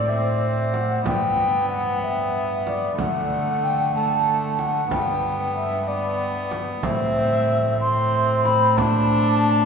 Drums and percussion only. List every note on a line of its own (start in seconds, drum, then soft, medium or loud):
0.74 frame drum soft
1.06 frame drum medium
2.67 frame drum soft
2.98 frame drum medium
4.59 frame drum soft
4.91 frame drum medium
6.51 frame drum soft
6.83 frame drum medium
8.45 frame drum soft
8.78 frame drum medium